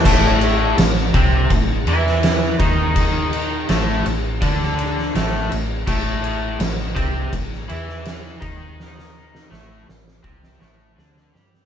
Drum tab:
CC |x-x-x-x-x-x-x-x-|x-x-x-x-x-x-x-x-|x-x-x-x-x-x-x-x-|----------------|
SD |----o------oo---|----o----o-oo---|----o----o-oo---|oo-oo-oo-oo-oooo|
BD |o-----o-o-----o-|o-------o-------|o-----o-o-----o-|--------o-------|